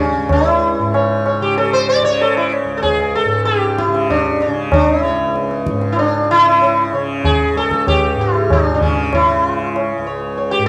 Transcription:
Already playing: tanpura C#2 G#2 C#3
0.00 sitar C#4
0.18 tanpura C#2
0.29 sitar E4, tabla na, tabla ge
0.79 tanpura G#2
0.94 sitar C#5, tabla na
1.26 sitar C#5, tabla na
1.41 tanpura C#3, sitar G4
1.58 sitar A4, tabla tin
1.73 sitar C5
1.89 sitar D5
2.02 tanpura C#3, sitar C#5
2.21 sitar A4, tabla tin
2.37 sitar E4
2.52 tabla na
2.64 tanpura C#2
2.77 sitar A4
2.83 sitar G#4, tabla tin, tabla ge
3.15 sitar A4
3.25 tanpura G#2
3.45 sitar G4, tabla te
3.63 tabla te
3.78 sitar E4, tabla ke
3.87 tanpura C#3
3.95 tabla te
4.10 sitar D4, tabla na, tabla ge
4.41 sitar C#4, tabla te
4.48 tanpura C#3
4.72 sitar D4, tabla na, tabla ge
5.01 sitar E4
5.05 tanpura C#2, sitar C#5
5.36 tabla te
5.51 tabla te
5.66 tabla ke
5.71 tanpura G#2
5.82 tabla te
5.93 sitar E4
5.97 sitar D4, tabla tin
6.31 tanpura C#3, sitar E4
6.62 tabla tin
6.93 tanpura C#3, sitar C#5, tabla na
7.24 sitar G#4, tabla tin, tabla ge
7.54 tanpura C#2, sitar A4, tabla na
7.71 tabla ke
7.87 sitar G4, tabla na, tabla ge
8.14 tanpura G#2
8.19 sitar E4, tabla te
8.50 sitar D4, tabla na, tabla ge
8.74 tanpura C#3, sitar D4
8.81 sitar C#4, tabla ge
9.13 sitar E4, tabla na, tabla ge
9.37 tanpura C#3
9.76 tabla na
9.98 tanpura C#2
10.07 sitar C#5
10.38 sitar C#5, tabla tin
10.51 sitar G4
10.58 tanpura G#2

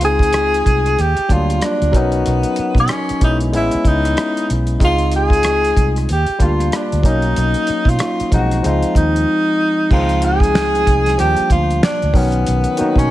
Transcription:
Already playing: fingered electric bass C#2
0.01 tine electric piano G#3 C4 D#4 F4, tenor saxophone G#4, closed hi-hat
0.19 kick, closed hi-hat
0.33 cross-stick, closed hi-hat
0.54 closed hi-hat
0.66 fingered electric bass C2, kick, closed hi-hat
0.86 cross-stick, closed hi-hat
0.99 fingered electric bass D#2, tenor saxophone G4, closed hi-hat
1.17 muted fingered electric bass stroke, closed hi-hat
1.28 fingered electric bass D2, tine electric piano F#3 A#3 D4 F4, kick, closed hi-hat
1.32 tine electric piano G3, tenor saxophone F4
1.50 cross-stick, closed hi-hat
1.61 tenor saxophone D4, cross-stick, closed hi-hat
1.82 fingered electric bass D2, closed hi-hat
1.92 fingered electric bass B1, tine electric piano F#3 C#4 D#4 A#4, tenor saxophone B3, kick, closed hi-hat
2.12 closed hi-hat
2.26 fingered electric bass B1, closed hi-hat
2.43 closed hi-hat
2.56 muted fingered electric bass stroke, closed hi-hat
2.75 fingered electric bass B2, kick, closed hi-hat
2.80 tenor saxophone C#4
2.88 cross-stick, closed hi-hat
3.09 muted fingered electric bass stroke, closed hi-hat
3.20 fingered electric bass B1, tine electric piano G#3 B3 C#4 E4, tenor saxophone D#4, kick, closed hi-hat
3.41 closed hi-hat
3.52 fingered electric bass A1, tine electric piano G#3 B3 C#4 E4, tenor saxophone E4, closed hi-hat
3.71 muted fingered electric bass stroke, closed hi-hat
3.85 fingered electric bass C#2, tenor saxophone D#4, kick, closed hi-hat
4.05 cross-stick, closed hi-hat
4.17 cross-stick, closed hi-hat
4.37 closed hi-hat
4.50 fingered electric bass B1, closed hi-hat
4.67 closed hi-hat
4.80 fingered electric bass C#2, tine electric piano G#3 C4 D#4 F4, kick, closed hi-hat
4.84 tenor saxophone F4
4.98 closed hi-hat
5.12 closed hi-hat
5.16 tenor saxophone G#4
5.30 kick, closed hi-hat
5.43 cross-stick, closed hi-hat
5.64 closed hi-hat
5.77 fingered electric bass C2, kick, closed hi-hat
5.96 cross-stick, closed hi-hat
6.09 fingered electric bass D#2, tenor saxophone G4, closed hi-hat
6.27 muted fingered electric bass stroke, closed hi-hat
6.39 fingered electric bass D2, tine electric piano G3 A#3 D4 F4, kick, closed hi-hat
6.44 tenor saxophone F4
6.60 cross-stick, closed hi-hat
6.72 tenor saxophone D4, cross-stick, closed hi-hat
6.92 fingered electric bass D2, closed hi-hat
7.03 fingered electric bass B1, tine electric piano F#3 A#3 C#4 D#4, kick, closed hi-hat
7.07 tenor saxophone D#4
7.22 closed hi-hat
7.36 fingered electric bass B1, closed hi-hat
7.54 closed hi-hat
7.67 muted fingered electric bass stroke, closed hi-hat
7.85 fingered electric bass B2, tenor saxophone F4, kick, closed hi-hat
7.99 cross-stick, closed hi-hat
8.20 muted fingered electric bass stroke, closed hi-hat
8.31 fingered electric bass B1, tine electric piano F3 G#3 C4 D#4, tenor saxophone F#4, kick, closed hi-hat
8.51 cross-stick, closed hi-hat
8.63 fingered electric bass C#2, tine electric piano F3 G#3 C4 D#4, tenor saxophone F4, closed hi-hat
8.83 muted fingered electric bass stroke, closed hi-hat
8.95 fingered electric bass D#2, tenor saxophone D#4, kick, closed hi-hat
9.16 closed hi-hat
9.91 fingered electric bass C#2, tine electric piano D#3 G#3 C4 D#4, tenor saxophone F4, kick, crash
9.97 tine electric piano F3
10.09 closed hi-hat
10.22 tenor saxophone G#4, closed hi-hat
10.40 kick, closed hi-hat
10.55 finger snap, snare
10.75 closed hi-hat
10.87 fingered electric bass C2, kick, closed hi-hat
11.06 snare, closed hi-hat
11.18 fingered electric bass D#2, tine electric piano F3 G3 A#3 D4, tenor saxophone G4, closed hi-hat
11.37 muted fingered electric bass stroke, closed hi-hat
11.50 fingered electric bass D2, tenor saxophone F4, kick, closed hi-hat
11.71 closed hi-hat
11.83 tenor saxophone D4, finger snap, snare
12.02 fingered electric bass D2, closed hi-hat
12.13 fingered electric bass B1, tine electric piano D#3 F#3 C#4 A#4, tenor saxophone B3, kick, open hi-hat
12.32 closed hi-hat
12.46 fingered electric bass B1, closed hi-hat
12.64 closed hi-hat
12.77 tine electric piano D#3 F#3 A#3 D#4, muted fingered electric bass stroke, closed hi-hat
12.96 fingered electric bass B2, tenor saxophone C#4, kick, closed hi-hat

